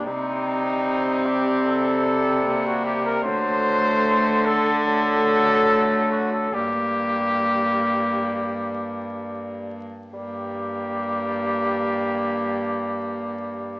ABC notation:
X:1
M:4/4
L:1/16
Q:1/4=70
K:Gm
V:1 name="Cornet"
E6 G2 A4- A ^F G B | c6 A2 A6 ^F A | G12- G2 z2 | G16 |]
V:2 name="Viola"
C12 B,4 | A,8 A,8 | B,12- B,3 z | B,16 |]
V:3 name="Bassoon" clef=bass
G,16 | ^F,6 z2 F,8 | G,12- G,2 z2 | G,16 |]
V:4 name="Cello" clef=bass
C,16 | D,16 | G,,12- G,,3 z | G,,16 |]